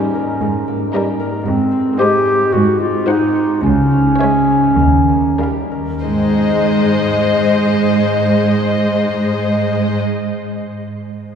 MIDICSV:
0, 0, Header, 1, 7, 480
1, 0, Start_track
1, 0, Key_signature, -4, "major"
1, 0, Tempo, 525394
1, 1331, Time_signature, 4, 2, 24, 8
1, 1816, Tempo, 552995
1, 3736, Tempo, 597610
1, 4696, Tempo, 627615
1, 9252, End_track
2, 0, Start_track
2, 0, Title_t, "Violin section"
2, 0, Program_c, 0, 48
2, 0, Note_on_c, 0, 75, 49
2, 250, Note_off_c, 0, 75, 0
2, 853, Note_on_c, 0, 75, 47
2, 1208, Note_off_c, 0, 75, 0
2, 1815, Note_on_c, 0, 75, 50
2, 2165, Note_off_c, 0, 75, 0
2, 2759, Note_on_c, 0, 78, 50
2, 3118, Note_off_c, 0, 78, 0
2, 3740, Note_on_c, 0, 76, 43
2, 4090, Note_off_c, 0, 76, 0
2, 4696, Note_on_c, 0, 77, 35
2, 5058, Note_off_c, 0, 77, 0
2, 5184, Note_on_c, 0, 75, 42
2, 8219, Note_off_c, 0, 75, 0
2, 9252, End_track
3, 0, Start_track
3, 0, Title_t, "Violin section"
3, 0, Program_c, 1, 48
3, 0, Note_on_c, 1, 70, 46
3, 253, Note_off_c, 1, 70, 0
3, 859, Note_on_c, 1, 70, 46
3, 1211, Note_off_c, 1, 70, 0
3, 1813, Note_on_c, 1, 72, 45
3, 2165, Note_off_c, 1, 72, 0
3, 2757, Note_on_c, 1, 72, 48
3, 3117, Note_off_c, 1, 72, 0
3, 3731, Note_on_c, 1, 73, 42
3, 4086, Note_off_c, 1, 73, 0
3, 4693, Note_on_c, 1, 70, 33
3, 5057, Note_off_c, 1, 70, 0
3, 5183, Note_on_c, 1, 72, 35
3, 8218, Note_off_c, 1, 72, 0
3, 9252, End_track
4, 0, Start_track
4, 0, Title_t, "Clarinet"
4, 0, Program_c, 2, 71
4, 0, Note_on_c, 2, 61, 56
4, 1061, Note_off_c, 2, 61, 0
4, 1335, Note_on_c, 2, 60, 58
4, 1784, Note_off_c, 2, 60, 0
4, 1818, Note_on_c, 2, 67, 74
4, 2286, Note_on_c, 2, 66, 65
4, 2299, Note_off_c, 2, 67, 0
4, 2518, Note_off_c, 2, 66, 0
4, 2524, Note_on_c, 2, 65, 60
4, 2752, Note_off_c, 2, 65, 0
4, 2757, Note_on_c, 2, 63, 65
4, 3231, Note_off_c, 2, 63, 0
4, 3241, Note_on_c, 2, 61, 63
4, 4906, Note_off_c, 2, 61, 0
4, 5183, Note_on_c, 2, 56, 41
4, 8218, Note_off_c, 2, 56, 0
4, 9252, End_track
5, 0, Start_track
5, 0, Title_t, "Harp"
5, 0, Program_c, 3, 46
5, 0, Note_on_c, 3, 44, 44
5, 0, Note_on_c, 3, 58, 39
5, 0, Note_on_c, 3, 61, 31
5, 0, Note_on_c, 3, 67, 40
5, 0, Note_on_c, 3, 73, 42
5, 135, Note_on_c, 3, 70, 37
5, 365, Note_off_c, 3, 44, 0
5, 376, Note_on_c, 3, 44, 40
5, 607, Note_off_c, 3, 58, 0
5, 618, Note_on_c, 3, 58, 38
5, 845, Note_off_c, 3, 67, 0
5, 856, Note_on_c, 3, 67, 41
5, 1081, Note_off_c, 3, 70, 0
5, 1092, Note_on_c, 3, 70, 45
5, 1318, Note_off_c, 3, 44, 0
5, 1329, Note_on_c, 3, 44, 47
5, 1349, Note_off_c, 3, 70, 0
5, 1350, Note_off_c, 3, 58, 0
5, 1350, Note_off_c, 3, 67, 0
5, 1351, Note_off_c, 3, 61, 0
5, 1353, Note_off_c, 3, 73, 0
5, 1567, Note_on_c, 3, 60, 42
5, 1815, Note_on_c, 3, 68, 46
5, 2047, Note_on_c, 3, 72, 39
5, 2269, Note_off_c, 3, 44, 0
5, 2280, Note_on_c, 3, 44, 50
5, 2508, Note_off_c, 3, 60, 0
5, 2518, Note_on_c, 3, 60, 35
5, 2747, Note_off_c, 3, 68, 0
5, 2758, Note_on_c, 3, 68, 42
5, 2988, Note_off_c, 3, 72, 0
5, 2998, Note_on_c, 3, 72, 44
5, 3238, Note_on_c, 3, 49, 43
5, 3259, Note_off_c, 3, 44, 0
5, 3260, Note_off_c, 3, 60, 0
5, 3261, Note_off_c, 3, 72, 0
5, 3486, Note_on_c, 3, 61, 38
5, 3725, Note_off_c, 3, 68, 0
5, 3735, Note_on_c, 3, 68, 43
5, 3972, Note_on_c, 3, 73, 34
5, 4212, Note_on_c, 3, 51, 40
5, 4227, Note_off_c, 3, 49, 0
5, 4229, Note_off_c, 3, 68, 0
5, 4451, Note_on_c, 3, 58, 31
5, 4695, Note_on_c, 3, 67, 32
5, 4940, Note_on_c, 3, 70, 29
5, 5181, Note_on_c, 3, 44, 29
5, 5201, Note_off_c, 3, 58, 0
5, 5201, Note_off_c, 3, 61, 0
5, 5201, Note_off_c, 3, 67, 0
5, 5201, Note_off_c, 3, 73, 0
5, 5202, Note_off_c, 3, 51, 0
5, 5202, Note_off_c, 3, 70, 0
5, 5236, Note_on_c, 3, 56, 29
5, 5288, Note_on_c, 3, 60, 29
5, 5344, Note_on_c, 3, 63, 31
5, 5396, Note_on_c, 3, 68, 31
5, 5449, Note_on_c, 3, 75, 31
5, 8216, Note_off_c, 3, 44, 0
5, 8270, Note_off_c, 3, 56, 0
5, 8323, Note_off_c, 3, 60, 0
5, 8378, Note_off_c, 3, 63, 0
5, 8430, Note_off_c, 3, 68, 0
5, 8484, Note_off_c, 3, 75, 0
5, 9252, End_track
6, 0, Start_track
6, 0, Title_t, "Viola section"
6, 0, Program_c, 4, 48
6, 0, Note_on_c, 4, 55, 46
6, 253, Note_off_c, 4, 55, 0
6, 856, Note_on_c, 4, 55, 44
6, 1209, Note_off_c, 4, 55, 0
6, 1818, Note_on_c, 4, 56, 47
6, 2167, Note_off_c, 4, 56, 0
6, 2759, Note_on_c, 4, 56, 43
6, 3118, Note_off_c, 4, 56, 0
6, 3736, Note_on_c, 4, 56, 37
6, 4088, Note_off_c, 4, 56, 0
6, 4696, Note_on_c, 4, 55, 33
6, 5058, Note_off_c, 4, 55, 0
6, 5178, Note_on_c, 4, 56, 40
6, 8213, Note_off_c, 4, 56, 0
6, 9252, End_track
7, 0, Start_track
7, 0, Title_t, "Cello section"
7, 0, Program_c, 5, 48
7, 375, Note_on_c, 5, 44, 53
7, 755, Note_off_c, 5, 44, 0
7, 1323, Note_on_c, 5, 44, 59
7, 1710, Note_off_c, 5, 44, 0
7, 2280, Note_on_c, 5, 44, 60
7, 2658, Note_off_c, 5, 44, 0
7, 3235, Note_on_c, 5, 37, 58
7, 3627, Note_off_c, 5, 37, 0
7, 4207, Note_on_c, 5, 39, 45
7, 4591, Note_off_c, 5, 39, 0
7, 5180, Note_on_c, 5, 44, 38
7, 8215, Note_off_c, 5, 44, 0
7, 9252, End_track
0, 0, End_of_file